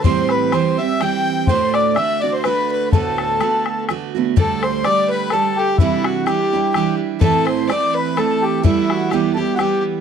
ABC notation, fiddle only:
X:1
M:3/4
L:1/16
Q:"Swing" 1/4=126
K:Dmix
V:1 name="Fiddle"
c2 B2 c2 e2 g4 | c2 d2 e2 d c B2 B2 | A8 z4 | A2 c2 d2 B2 A2 G2 |
E2 F2 G4 G2 z2 | A2 c2 d2 B2 A4 | E4 G2 G2 G2 z2 |]